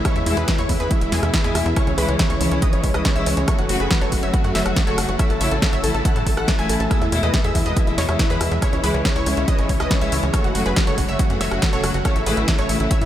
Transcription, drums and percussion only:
0.05 kick loud
0.05 cross-stick medium
0.05 closed hi-hat loud
0.16 closed hi-hat soft
0.26 open hi-hat loud
0.37 closed hi-hat soft
0.48 kick loud
0.48 snare loud
0.48 closed hi-hat loud
0.59 closed hi-hat soft
0.69 kick medium
0.69 open hi-hat loud
0.80 closed hi-hat soft
0.91 kick loud
0.91 closed hi-hat loud
1.01 closed hi-hat soft
1.12 snare medium
1.12 open hi-hat loud
1.23 cross-stick medium
1.23 closed hi-hat soft
1.34 kick loud
1.34 snare loud
1.34 closed hi-hat medium
1.44 closed hi-hat soft
1.55 cross-stick medium
1.55 open hi-hat loud
1.66 closed hi-hat soft
1.76 kick loud
1.76 cross-stick medium
1.76 closed hi-hat loud
1.87 closed hi-hat soft
1.98 open hi-hat loud
2.09 closed hi-hat soft
2.19 kick loud
2.19 snare loud
2.19 closed hi-hat loud
2.30 closed hi-hat soft
2.41 open hi-hat loud
2.51 closed hi-hat soft
2.62 kick loud
2.62 closed hi-hat medium
2.73 closed hi-hat soft
2.84 kick medium
2.84 open hi-hat loud
2.94 cross-stick medium
2.94 closed hi-hat soft
3.05 kick loud
3.05 snare loud
3.05 closed hi-hat medium
3.16 closed hi-hat soft
3.26 open hi-hat loud
3.37 closed hi-hat soft
3.48 kick loud
3.48 cross-stick medium
3.48 closed hi-hat medium
3.59 closed hi-hat soft
3.69 open hi-hat loud
3.80 closed hi-hat soft
3.91 kick loud
3.91 snare loud
3.91 closed hi-hat medium
4.01 closed hi-hat soft
4.12 kick medium
4.12 open hi-hat loud
4.23 closed hi-hat soft
4.34 kick loud
4.34 closed hi-hat medium
4.44 closed hi-hat soft
4.55 snare medium
4.55 open hi-hat loud
4.66 cross-stick medium
4.66 closed hi-hat soft
4.76 kick loud
4.76 snare loud
4.76 closed hi-hat medium
4.87 closed hi-hat soft
4.98 cross-stick medium
4.98 open hi-hat loud
5.09 closed hi-hat soft
5.19 kick loud
5.19 cross-stick medium
5.19 closed hi-hat medium
5.30 closed hi-hat soft
5.41 open hi-hat loud
5.51 closed hi-hat soft
5.62 kick loud
5.62 snare loud
5.62 closed hi-hat medium
5.73 closed hi-hat soft
5.84 open hi-hat loud
5.94 closed hi-hat soft
6.05 kick loud
6.05 closed hi-hat medium
6.16 closed hi-hat soft
6.27 kick medium
6.27 open hi-hat loud
6.37 cross-stick medium
6.37 closed hi-hat soft
6.48 kick loud
6.48 snare loud
6.48 closed hi-hat medium
6.59 closed hi-hat soft
6.69 open hi-hat loud
6.80 closed hi-hat soft
6.91 kick loud
6.91 cross-stick medium
6.91 closed hi-hat medium
7.02 closed hi-hat soft
7.12 open hi-hat loud
7.23 closed hi-hat soft
7.34 kick loud
7.34 snare loud
7.34 closed hi-hat medium
7.44 closed hi-hat soft
7.55 kick medium
7.55 open hi-hat loud
7.66 closed hi-hat soft
7.77 kick loud
7.77 closed hi-hat medium
7.87 closed hi-hat soft
7.98 snare medium
7.98 open hi-hat loud
8.09 cross-stick medium
8.09 closed hi-hat soft
8.19 kick loud
8.19 snare loud
8.19 closed hi-hat medium
8.30 closed hi-hat soft
8.41 cross-stick medium
8.41 open hi-hat loud
8.51 closed hi-hat soft
8.62 kick loud
8.62 cross-stick medium
8.62 closed hi-hat medium
8.73 closed hi-hat soft
8.84 open hi-hat loud
8.94 closed hi-hat soft
9.05 kick loud
9.05 snare loud
9.05 closed hi-hat medium
9.16 closed hi-hat soft
9.26 open hi-hat loud
9.37 closed hi-hat soft
9.48 kick loud
9.48 closed hi-hat medium
9.59 closed hi-hat soft
9.69 kick medium
9.69 open hi-hat loud
9.80 cross-stick medium
9.80 closed hi-hat soft
9.91 kick loud
9.91 snare loud
9.91 closed hi-hat medium
10.02 closed hi-hat soft
10.12 open hi-hat loud
10.23 closed hi-hat soft
10.34 kick loud
10.34 cross-stick medium
10.34 closed hi-hat medium
10.44 closed hi-hat soft
10.55 open hi-hat loud
10.66 closed hi-hat soft
10.76 kick loud
10.76 snare loud
10.76 closed hi-hat medium
10.87 closed hi-hat soft
10.98 kick medium
10.98 open hi-hat loud
11.09 closed hi-hat soft
11.19 kick loud
11.19 closed hi-hat medium
11.30 closed hi-hat soft
11.41 snare medium
11.41 open hi-hat loud
11.51 cross-stick medium
11.51 closed hi-hat soft
11.62 kick loud
11.62 snare loud
11.62 closed hi-hat medium
11.73 closed hi-hat soft
11.84 cross-stick medium
11.84 open hi-hat loud
11.94 closed hi-hat soft
12.05 kick loud
12.05 cross-stick medium
12.05 closed hi-hat loud
12.16 closed hi-hat soft
12.26 open hi-hat loud
12.37 closed hi-hat soft
12.48 kick loud
12.48 snare loud
12.48 closed hi-hat loud
12.59 closed hi-hat soft
12.69 open hi-hat loud
12.80 closed hi-hat soft
12.91 kick loud
12.91 closed hi-hat loud
13.01 closed hi-hat soft

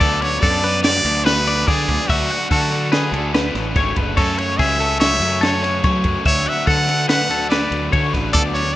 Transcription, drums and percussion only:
0.01 kick loud
0.01 ride loud
0.22 snare soft
0.22 ride medium
0.43 kick loud
0.43 snare soft
0.43 ride loud
0.64 snare soft
0.64 ride medium
0.84 snare loud
0.84 ride loud
1.05 ride medium
1.26 snare loud
1.26 ride loud
1.47 snare soft
1.47 ride medium
1.68 kick loud
1.68 ride loud
1.89 kick medium
1.89 ride medium
2.09 kick loud
2.09 ride loud
2.30 ride medium
2.51 kick loud
2.51 ride loud
2.72 ride medium
2.92 snare loud
2.92 ride loud
3.14 ride medium
3.34 snare loud
3.34 ride loud
3.55 snare soft
3.55 ride medium
3.76 kick loud
3.76 snare soft
3.76 ride loud
3.96 kick medium
3.96 ride medium
4.17 kick loud
4.17 crash loud
4.38 ride medium
4.59 kick loud
4.59 ride loud
4.80 ride medium
5.01 snare loud
5.01 ride loud
5.22 ride medium
5.43 snare loud
5.43 ride loud
5.64 snare soft
5.64 ride medium
5.84 kick loud
5.84 snare soft
5.84 ride loud
6.04 kick medium
6.04 ride medium
6.25 kick loud
6.25 ride loud
6.46 ride medium
6.67 kick loud
6.67 snare soft
6.67 ride loud
6.89 snare soft
6.89 ride medium
7.09 snare loud
7.09 ride loud
7.30 snare soft
7.30 ride medium
7.51 snare loud
7.51 ride loud
7.72 ride medium
7.93 kick loud
7.93 ride loud
8.14 kick medium
8.14 snare soft
8.14 ride medium
8.35 kick loud
8.35 ride loud
8.56 snare soft
8.56 ride medium

